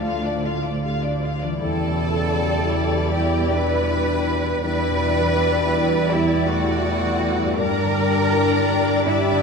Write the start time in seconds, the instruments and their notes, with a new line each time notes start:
Already playing: grand piano D2 A2 F3 F4 G4, double bass section D2, french horn section D3, cello section A3, violin section A4, clarinet D5, flute section F5
0.03 grand piano D2, viola section D3 F4, violin section F5
0.24 viola section F3 D4, violin section D5
0.31 grand piano A2
0.44 viola section D3 F4, violin section F5
0.57 grand piano F4
0.63 viola section F3 D4, violin section D5
0.83 viola section D3 F4, grand piano G4, violin section F5
1.03 viola section F3 D4, violin section D5
1.10 grand piano F4
1.23 viola section D3 F4, violin section F5
1.36 grand piano F3
1.42 harp E3, viola section F3 D4, violin section D5
1.48 harp G3
1.52 harp E4
1.57 harp D5
1.62 double bass section E2, grand piano E2, french horn section C#3, viola section G3 E4, cello section A4, violin section D5 A5, clarinet D5, flute section G5
1.87 grand piano B2
2.13 grand piano E4
2.38 grand piano F#4
2.64 grand piano E4
2.90 grand piano G3
3.14 grand piano E2, french horn section B3, cello section G4, violin section G5
3.40 grand piano B2
3.50 french horn section D4, cello section B4, violin section B5
3.65 grand piano E4
3.90 grand piano F#4
4.16 grand piano E4
4.40 grand piano G3
4.63 double bass section E2, grand piano E2, viola section G3 E4, french horn section D4, cello section B4, clarinet D5, violin section D5 B5, flute section G5
4.90 grand piano B2
5.15 grand piano E4
5.39 grand piano F#4
5.64 grand piano E4
5.88 grand piano G3
6.11 grand piano E2, french horn section G3, cello section E4, violin section E5
6.35 grand piano B2
6.47 french horn section A3, cello section F#4, violin section F#5
6.60 grand piano E4
6.85 grand piano F#4
7.09 grand piano E4
7.35 grand piano G3
7.41 harp G2
7.45 harp G3
7.50 harp D4
7.54 cello section A#4, harp D5
7.58 double bass section G2, grand piano G2, viola section G3 D4, french horn section D4, violin section D5 A#5, clarinet D5
7.84 grand piano D3
8.08 grand piano D4
8.32 grand piano E4
8.81 grand piano G3
9.05 grand piano G2, french horn section G3, cello section E4, violin section E5
9.32 grand piano D3